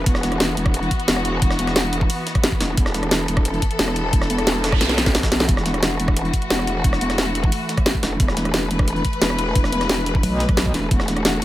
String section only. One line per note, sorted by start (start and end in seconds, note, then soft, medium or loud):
0.00 11.45 E3 medium
0.00 5.45 B3 medium
0.06 2.77 F#4 medium
2.78 5.48 A4 loud
5.49 11.45 A3 medium
5.49 8.19 F#4 medium
8.20 10.90 B4 medium
10.91 11.45 F#4 medium